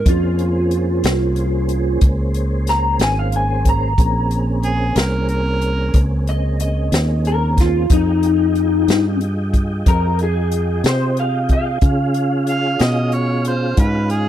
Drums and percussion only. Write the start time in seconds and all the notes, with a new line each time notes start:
0.06 kick, closed hi-hat
0.39 closed hi-hat
0.71 closed hi-hat
1.04 snare, closed hi-hat
1.36 closed hi-hat
1.69 closed hi-hat
2.01 kick, closed hi-hat
2.34 closed hi-hat
2.67 snare, closed hi-hat
2.99 snare, closed hi-hat
3.32 closed hi-hat
3.65 kick, closed hi-hat
3.98 kick, closed hi-hat
4.31 closed hi-hat
4.63 closed hi-hat
4.96 snare, closed hi-hat
5.29 closed hi-hat
5.61 closed hi-hat
5.94 kick, closed hi-hat
6.27 closed hi-hat
6.60 closed hi-hat
6.92 snare, closed hi-hat
7.25 closed hi-hat
7.57 kick, snare, closed hi-hat
7.90 kick, closed hi-hat
8.23 closed hi-hat
8.55 closed hi-hat
8.88 snare, closed hi-hat
9.21 closed hi-hat
9.54 kick, closed hi-hat
9.86 kick, closed hi-hat
10.19 closed hi-hat
10.51 closed hi-hat
10.84 snare, closed hi-hat
11.17 closed hi-hat
11.49 kick, closed hi-hat
11.81 kick, closed hi-hat
12.14 closed hi-hat
12.47 closed hi-hat
12.79 snare, closed hi-hat
13.12 closed hi-hat
13.45 closed hi-hat
13.77 kick, closed hi-hat
14.10 closed hi-hat